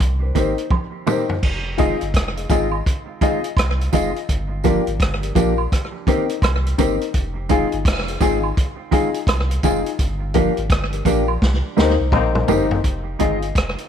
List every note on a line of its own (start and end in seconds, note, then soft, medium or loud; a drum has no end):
0.00 0.31 C2 loud
0.00 kick loud
0.00 closed hi-hat medium
0.22 0.28 A#4 soft
0.22 0.28 C5 soft
0.35 0.55 G#1 medium
0.35 0.52 D#3 medium
0.35 0.52 A#3 medium
0.35 0.52 C4 medium
0.35 0.59 D#4 medium
0.35 0.53 G4 loud
0.35 0.59 A#4 medium
0.35 0.60 C5 loud
0.35 kick medium
0.35 closed hi-hat medium
0.35 tambourine soft
0.58 closed hi-hat medium
0.70 kick loud
0.70 high tom medium
0.70 high woodblock medium
1.07 1.23 D#3 medium
1.07 1.24 A#3 medium
1.07 1.24 C4 medium
1.07 1.31 D#4 medium
1.07 1.24 G4 medium
1.07 1.31 A#4 medium
1.07 1.31 C5 loud
1.07 mid tom medium
1.07 tambourine medium
1.29 floor tom medium
1.43 1.94 F1 loud
1.43 kick loud
1.43 crash medium
1.78 1.95 D#3 medium
1.78 1.95 G#3 medium
1.78 1.96 C4 medium
1.78 2.02 F4 medium
1.78 1.96 F4 medium
1.78 2.02 G#4 medium
1.78 2.03 D#5 loud
1.78 kick medium
1.78 closed hi-hat medium
1.78 tambourine soft
2.01 2.13 G1 loud
2.01 closed hi-hat soft
2.14 2.45 F1 medium
2.14 kick loud
2.14 cross-stick loud
2.14 closed hi-hat medium
2.37 2.42 G#4 soft
2.37 2.42 D#5 soft
2.37 closed hi-hat medium
2.50 2.81 G#1 medium
2.50 2.67 D#3 medium
2.50 2.67 G#3 medium
2.50 2.67 C4 loud
2.50 2.74 F4 medium
2.50 2.67 F4 medium
2.50 2.74 G#4 medium
2.50 2.74 D#5 loud
2.50 kick loud
2.50 closed hi-hat medium
2.50 tambourine medium
2.72 high woodblock medium
2.86 kick loud
2.86 closed hi-hat medium
3.21 3.38 D#3 medium
3.21 3.38 G#3 medium
3.21 3.38 C4 medium
3.21 3.45 F4 medium
3.21 3.39 F4 medium
3.21 3.46 G#4 medium
3.21 3.46 D#5 loud
3.21 kick loud
3.21 closed hi-hat medium
3.21 tambourine soft
3.44 closed hi-hat medium
3.57 3.88 C2 loud
3.57 kick loud
3.57 cross-stick loud
3.57 closed hi-hat medium
3.57 high woodblock medium
3.81 closed hi-hat medium
3.93 4.13 F1 medium
3.93 4.09 D#3 medium
3.93 4.10 G#3 medium
3.93 4.10 C4 medium
3.93 4.17 F4 medium
3.93 4.10 F4 loud
3.93 4.17 G#4 medium
3.93 4.17 D#5 loud
3.93 kick medium
3.93 closed hi-hat medium
3.93 tambourine medium
4.16 closed hi-hat soft
4.29 4.80 G1 medium
4.29 kick medium
4.29 closed hi-hat medium
4.64 4.81 F3 medium
4.64 4.81 A#3 medium
4.64 4.81 D4 medium
4.64 4.88 F4 medium
4.64 4.88 G4 medium
4.64 4.82 G4 medium
4.64 4.89 A#4 loud
4.64 kick medium
4.64 closed hi-hat medium
4.64 tambourine soft
4.87 4.99 G#1 loud
4.87 closed hi-hat soft
5.00 5.31 G1 loud
5.00 kick loud
5.00 cross-stick loud
5.00 closed hi-hat medium
5.23 5.28 G4 soft
5.23 5.28 A#4 soft
5.23 closed hi-hat medium
5.35 5.67 A#1 medium
5.35 5.52 F3 medium
5.35 5.52 A#3 medium
5.35 5.53 D4 medium
5.35 5.59 F4 loud
5.35 5.60 G4 medium
5.35 5.53 G4 medium
5.35 5.60 A#4 loud
5.35 kick loud
5.35 closed hi-hat medium
5.35 tambourine medium
5.58 high woodblock medium
5.72 kick loud
5.72 cross-stick medium
5.72 closed hi-hat medium
6.07 6.23 D#3 medium
6.07 6.24 A#3 loud
6.07 6.31 C4 loud
6.07 6.24 C4 medium
6.07 6.31 D#4 medium
6.07 6.24 G4 loud
6.07 6.32 A#4 loud
6.07 kick medium
6.07 closed hi-hat medium
6.07 tambourine soft
6.29 closed hi-hat medium
6.42 6.74 C2 loud
6.42 kick loud
6.42 cross-stick loud
6.42 closed hi-hat medium
6.42 high woodblock medium
6.66 closed hi-hat medium
6.78 6.98 G1 medium
6.78 6.95 D#3 medium
6.78 6.95 A#3 medium
6.78 7.02 C4 loud
6.78 6.95 C4 medium
6.78 7.02 D#4 medium
6.78 6.96 G4 medium
6.78 7.03 A#4 loud
6.78 kick medium
6.78 closed hi-hat medium
6.78 tambourine medium
7.01 closed hi-hat soft
7.14 7.65 F1 loud
7.14 kick loud
7.14 closed hi-hat medium
7.49 7.66 D#3 medium
7.49 7.66 G#3 medium
7.49 7.66 C4 medium
7.49 7.74 D#4 loud
7.49 7.74 F4 medium
7.49 7.67 F4 loud
7.49 7.74 G#4 loud
7.49 kick medium
7.49 closed hi-hat medium
7.49 tambourine soft
7.72 7.84 G1 loud
7.72 closed hi-hat soft
7.85 8.16 F1 loud
7.85 kick loud
7.85 cross-stick loud
7.85 closed hi-hat medium
8.08 8.14 F4 soft
8.08 8.14 G#4 soft
8.08 closed hi-hat medium
8.21 8.52 G#1 loud
8.21 8.37 D#3 medium
8.21 8.37 G#3 medium
8.21 8.38 C4 loud
8.21 8.45 D#4 medium
8.21 8.45 F4 medium
8.21 8.38 F4 medium
8.21 8.45 G#4 loud
8.21 kick loud
8.21 closed hi-hat medium
8.21 tambourine medium
8.43 high woodblock medium
8.57 kick loud
8.57 closed hi-hat medium
8.91 9.08 D#3 medium
8.91 9.09 G#3 medium
8.91 9.09 C4 medium
8.91 9.16 D#4 loud
8.91 9.16 F4 medium
8.91 9.09 F4 medium
8.91 9.16 G#4 loud
8.91 kick medium
8.91 closed hi-hat medium
8.91 tambourine soft
9.14 closed hi-hat medium
9.27 9.59 C2 loud
9.27 kick loud
9.27 cross-stick loud
9.27 closed hi-hat loud
9.27 high woodblock medium
9.51 closed hi-hat medium
9.63 9.83 F1 medium
9.63 9.80 D#3 medium
9.63 9.80 G#3 medium
9.63 9.81 C4 medium
9.63 9.87 D#4 loud
9.63 9.88 F4 medium
9.63 9.81 F4 medium
9.63 9.88 G#4 loud
9.63 kick medium
9.63 closed hi-hat medium
9.63 tambourine medium
9.86 closed hi-hat soft
9.99 10.50 G1 loud
9.99 kick loud
9.99 closed hi-hat medium
10.34 10.51 F3 medium
10.34 10.51 A#3 medium
10.34 10.52 D4 medium
10.34 10.58 F4 medium
10.34 10.58 G4 medium
10.34 10.52 G4 medium
10.34 10.59 A#4 loud
10.34 kick medium
10.34 closed hi-hat medium
10.34 tambourine soft
10.57 10.69 G#1 medium
10.57 closed hi-hat soft
10.70 11.01 G1 loud
10.70 kick loud
10.70 cross-stick loud
10.70 closed hi-hat medium
10.93 10.98 G4 soft
10.93 10.98 A#4 soft
10.93 closed hi-hat medium
11.05 11.37 A#1 loud
11.05 11.22 F3 medium
11.05 11.22 A#3 medium
11.05 11.23 D4 medium
11.05 11.30 F4 medium
11.05 11.30 G4 medium
11.05 11.23 G4 medium
11.05 11.30 A#4 loud
11.05 kick loud
11.05 closed hi-hat medium
11.05 tambourine medium
11.28 high woodblock medium
11.42 11.62 C2 loud
11.42 kick loud
11.42 snare medium
11.77 11.97 D2 loud
11.77 11.93 G3 medium
11.77 11.96 A#3 medium
11.77 11.94 A#3 medium
11.77 11.96 C4 medium
11.77 12.01 D#4 medium
11.77 11.96 D#4 medium
11.77 11.94 D#4 medium
11.77 11.94 G4 medium
11.77 12.01 A#4 medium
11.77 12.01 C5 loud
11.77 snare medium
11.77 tambourine soft
12.00 12.11 C2 medium
12.12 12.44 A#1 medium
12.12 12.80 A#3 medium
12.12 12.80 C4 loud
12.12 12.80 D#4 loud
12.12 kick loud
12.12 mid tom medium
12.12 high woodblock medium
12.35 mid tom medium
12.48 12.80 G1 medium
12.48 12.65 G3 medium
12.48 12.65 A#3 medium
12.48 12.72 D#4 medium
12.48 12.65 D#4 medium
12.48 12.65 G4 medium
12.48 12.73 A#4 medium
12.48 12.73 C5 loud
12.48 floor tom loud
12.48 tambourine medium
12.71 floor tom medium
12.84 13.16 F1 loud
12.84 kick loud
12.84 closed hi-hat medium
13.19 13.52 G1 loud
13.19 13.36 D#3 medium
13.19 13.36 G#3 medium
13.19 13.36 C4 medium
13.19 13.44 F4 medium
13.19 13.37 F4 medium
13.19 13.44 G#4 medium
13.19 13.44 D#5 loud
13.19 kick medium
13.19 closed hi-hat medium
13.42 closed hi-hat soft
13.55 13.75 F1 loud
13.55 kick loud
13.55 cross-stick loud
13.55 closed hi-hat medium
13.78 closed hi-hat medium